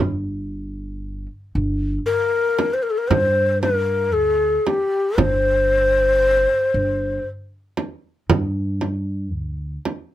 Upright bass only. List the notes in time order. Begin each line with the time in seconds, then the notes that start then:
0.00 G1
1.55 G1
3.10 G2
4.15 D2
5.18 G1
6.74 G1
8.30 G2
9.33 D2